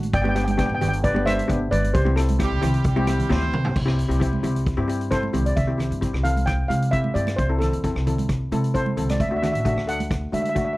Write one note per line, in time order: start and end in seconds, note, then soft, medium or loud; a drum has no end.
0.00 0.10 A1 medium
0.00 closed hi-hat medium
0.13 0.62 G1 medium
0.13 0.21 D5 medium
0.13 0.21 G5 loud
0.13 kick loud
0.13 closed hi-hat medium
0.22 0.31 B3 medium
0.22 0.31 D4 medium
0.22 0.31 G4 medium
0.22 0.28 G5 medium
0.22 high conga medium
0.29 0.34 G5 medium
0.35 0.50 B3 medium
0.35 0.50 D4 medium
0.35 0.50 G4 medium
0.35 0.43 G5 medium
0.35 cross-stick medium
0.35 closed hi-hat medium
0.45 0.50 G5 medium
0.45 closed hi-hat medium
0.45 high conga medium
0.51 0.57 G5 medium
0.57 0.72 B3 medium
0.57 0.72 D4 medium
0.57 0.72 G4 medium
0.57 0.65 G5 medium
0.57 kick medium
0.57 cross-stick medium
0.57 closed hi-hat medium
0.66 0.79 G1 medium
0.66 0.73 G5 medium
0.75 0.80 G5 medium
0.81 1.39 G1 medium
0.81 1.02 B3 medium
0.81 1.02 D4 medium
0.81 1.02 G4 medium
0.81 0.87 G5 medium
0.81 closed hi-hat medium
0.81 low conga medium
0.88 0.96 G5 medium
0.93 closed hi-hat medium
1.04 1.25 B4 medium
1.04 1.27 D5 loud
1.04 kick loud
1.04 closed hi-hat medium
1.15 1.22 B3 medium
1.15 1.22 D4 medium
1.15 1.22 G4 medium
1.15 high conga medium
1.26 1.40 B3 medium
1.26 1.40 D4 medium
1.26 1.40 G4 medium
1.26 1.68 C5 medium
1.26 1.73 E5 medium
1.26 cross-stick medium
1.26 closed hi-hat medium
1.26 high conga medium
1.39 closed hi-hat medium
1.48 1.69 G1 medium
1.48 1.83 B3 medium
1.48 1.83 D4 medium
1.48 1.83 G4 medium
1.48 kick medium
1.48 closed hi-hat medium
1.71 1.91 G1 medium
1.71 1.93 B4 medium
1.71 1.95 D5 medium
1.71 closed hi-hat medium
1.71 high conga medium
1.71 low conga medium
1.84 closed hi-hat medium
1.93 2.43 C2 loud
1.93 3.26 G4 medium
1.93 3.26 C5 medium
1.93 kick loud
1.93 closed hi-hat medium
2.05 2.12 C4 medium
2.05 2.12 E4 medium
2.05 2.12 G4 medium
2.05 high conga medium
2.16 2.30 C4 medium
2.16 2.30 E4 medium
2.16 2.30 A4 medium
2.16 cross-stick medium
2.16 closed hi-hat medium
2.29 closed hi-hat medium
2.29 high conga medium
2.39 2.82 G3 medium
2.39 2.53 C4 medium
2.39 2.53 E4 medium
2.39 2.53 G4 medium
2.39 2.82 G4 medium
2.39 kick medium
2.39 cross-stick medium
2.39 closed hi-hat medium
2.51 2.61 C2 medium
2.62 3.20 C2 medium
2.62 2.82 C4 medium
2.62 2.82 E4 medium
2.62 2.82 G4 medium
2.62 cross-stick medium
2.62 closed hi-hat medium
2.62 low conga medium
2.74 closed hi-hat medium
2.84 3.26 G3 medium
2.84 3.26 G4 medium
2.84 kick loud
2.84 closed hi-hat medium
2.96 3.03 C4 medium
2.96 3.03 E4 medium
2.96 3.03 G4 loud
2.96 high conga medium
3.07 3.21 C4 medium
3.07 3.21 E4 medium
3.07 3.21 G4 medium
3.07 cross-stick medium
3.07 closed hi-hat medium
3.07 high conga medium
3.20 closed hi-hat medium
3.20 low conga medium
3.29 3.50 D2 medium
3.29 3.75 C4 medium
3.29 3.64 C4 medium
3.29 3.64 E4 medium
3.29 3.64 G4 loud
3.29 3.75 C5 loud
3.29 kick medium
3.29 snare medium
3.42 high tom medium
3.52 3.73 C2 medium
3.52 mid tom medium
3.52 low conga medium
3.65 floor tom medium
3.76 4.05 C2 medium
3.76 kick loud
3.76 crash loud
3.86 4.00 C4 medium
3.86 4.00 E4 medium
3.86 4.00 G4 medium
3.86 cross-stick medium
3.99 closed hi-hat medium
4.09 4.38 C2 medium
4.09 4.16 C4 medium
4.09 4.16 E4 medium
4.09 4.16 G4 medium
4.09 closed hi-hat medium
4.20 4.34 C4 medium
4.20 4.34 E4 medium
4.20 4.34 G4 medium
4.20 kick medium
4.20 closed hi-hat medium
4.33 high conga medium
4.43 4.72 C2 medium
4.43 4.64 C4 medium
4.43 4.64 E4 medium
4.43 4.64 G4 medium
4.43 closed hi-hat medium
4.43 low conga medium
4.56 closed hi-hat medium
4.66 kick loud
4.66 closed hi-hat soft
4.77 5.26 G2 medium
4.77 4.84 C4 medium
4.77 4.84 E4 medium
4.77 4.84 G4 loud
4.88 5.02 C4 medium
4.88 5.02 E4 medium
4.88 5.02 G4 medium
4.88 closed hi-hat medium
5.01 closed hi-hat soft
5.11 5.25 C4 medium
5.11 5.25 E4 medium
5.11 5.25 A4 medium
5.11 5.46 C5 medium
5.11 kick medium
5.11 cross-stick medium
5.11 closed hi-hat medium
5.23 high conga medium
5.33 5.53 C2 medium
5.33 5.54 C4 medium
5.33 5.54 E4 medium
5.33 5.54 G4 medium
5.33 closed hi-hat medium
5.33 high conga medium
5.33 low conga medium
5.46 5.56 D5 medium
5.46 closed hi-hat medium
5.56 5.86 C2 medium
5.56 6.27 E5 medium
5.56 kick medium
5.56 closed hi-hat medium
5.56 low conga medium
5.67 5.74 C4 medium
5.67 5.74 E4 medium
5.67 5.74 G4 medium
5.78 5.93 C4 medium
5.78 5.93 E4 medium
5.78 5.93 G4 medium
5.78 cross-stick medium
5.78 closed hi-hat medium
5.78 low conga medium
5.91 6.10 G2 medium
5.91 closed hi-hat medium
6.01 6.16 C4 medium
6.01 6.15 E4 medium
6.01 6.15 G4 medium
6.01 kick medium
6.01 closed hi-hat medium
6.13 6.61 C2 medium
6.13 cross-stick medium
6.24 6.52 C4 medium
6.24 6.52 E4 medium
6.24 6.52 A4 medium
6.24 6.47 F5 medium
6.24 closed hi-hat medium
6.24 low conga medium
6.37 closed hi-hat medium
6.37 high conga medium
6.46 6.68 G5 medium
6.46 kick loud
6.46 cross-stick medium
6.46 closed hi-hat medium
6.68 7.08 C3 medium
6.68 6.84 C4 medium
6.68 6.84 E4 medium
6.68 6.84 G4 medium
6.68 6.93 F5 medium
6.68 closed hi-hat medium
6.68 high conga medium
6.82 closed hi-hat medium
6.91 7.06 C4 medium
6.91 7.06 E4 medium
6.91 7.06 G4 medium
6.91 7.15 E5 medium
6.91 kick medium
6.91 closed hi-hat medium
7.04 high conga medium
7.14 7.35 G2 medium
7.14 7.36 C4 medium
7.14 7.36 E4 medium
7.14 7.36 G4 medium
7.14 7.38 D5 medium
7.14 closed hi-hat medium
7.14 low conga medium
7.27 cross-stick medium
7.27 closed hi-hat medium
7.27 high conga medium
7.36 7.68 C2 medium
7.36 7.61 C5 medium
7.36 kick loud
7.36 closed hi-hat medium
7.36 low conga medium
7.49 7.56 C4 medium
7.49 7.56 E4 medium
7.49 7.56 A4 medium
7.58 7.74 C4 medium
7.58 7.75 E4 medium
7.58 8.46 A4 medium
7.58 7.74 A4 medium
7.58 cross-stick medium
7.58 closed hi-hat medium
7.58 low conga medium
7.72 7.92 E2 medium
7.72 closed hi-hat medium
7.84 7.98 C4 medium
7.84 7.98 E4 medium
7.84 7.98 A4 medium
7.84 kick medium
7.84 closed hi-hat medium
7.95 8.43 C2 medium
7.95 cross-stick medium
8.07 8.34 C4 medium
8.07 8.34 E4 medium
8.07 8.34 A4 medium
8.07 closed hi-hat medium
8.07 low conga medium
8.18 closed hi-hat medium
8.18 high conga medium
8.29 kick medium
8.29 cross-stick medium
8.29 closed hi-hat medium
8.51 8.90 C3 medium
8.51 8.66 C4 medium
8.51 8.66 E4 medium
8.51 8.66 A4 medium
8.51 closed hi-hat medium
8.51 high conga medium
8.64 closed hi-hat medium
8.74 8.88 C4 medium
8.74 8.88 E4 medium
8.74 8.88 A4 medium
8.74 9.10 C5 medium
8.74 kick medium
8.74 closed hi-hat medium
8.86 high conga medium
8.97 9.16 C2 medium
8.97 9.18 C4 medium
8.97 9.17 E4 medium
8.97 9.18 A4 medium
8.97 closed hi-hat medium
8.97 low conga medium
9.09 9.20 D5 medium
9.09 cross-stick medium
9.09 closed hi-hat medium
9.09 high conga medium
9.20 9.49 D2 medium
9.20 9.28 E5 medium
9.20 kick loud
9.20 closed hi-hat medium
9.20 low conga medium
9.29 9.38 A3 medium
9.29 9.38 D4 medium
9.29 9.38 F#4 medium
9.29 9.35 E5 medium
9.37 9.42 E5 medium
9.42 9.56 A3 medium
9.42 9.56 D4 medium
9.42 9.56 F#4 medium
9.42 9.50 E5 medium
9.42 cross-stick medium
9.42 closed hi-hat medium
9.42 low conga medium
9.52 9.73 A1 medium
9.52 9.59 E5 medium
9.52 closed hi-hat medium
9.60 9.65 E5 medium
9.65 9.79 A3 medium
9.65 9.79 D4 medium
9.65 9.79 F#4 medium
9.65 9.72 E5 medium
9.65 kick medium
9.65 closed hi-hat medium
9.74 10.24 D2 medium
9.74 9.81 E5 medium
9.74 cross-stick medium
9.87 10.15 A3 medium
9.87 10.15 D4 medium
9.87 10.15 A4 medium
9.87 10.30 F#5 medium
9.87 closed hi-hat medium
10.00 closed hi-hat medium
10.00 high conga medium
10.11 kick loud
10.11 cross-stick medium
10.11 closed hi-hat medium
10.32 10.71 D3 medium
10.32 10.46 A3 medium
10.32 10.47 D4 medium
10.32 10.46 F#4 medium
10.32 10.41 E5 medium
10.32 closed hi-hat medium
10.32 high conga medium
10.42 10.48 E5 medium
10.42 closed hi-hat medium
10.49 10.56 E5 medium
10.55 10.69 A3 medium
10.55 10.69 D4 medium
10.55 10.69 F#4 medium
10.55 10.64 E5 medium
10.55 kick medium
10.55 closed hi-hat medium
10.65 10.72 E5 medium
10.73 10.77 E5 medium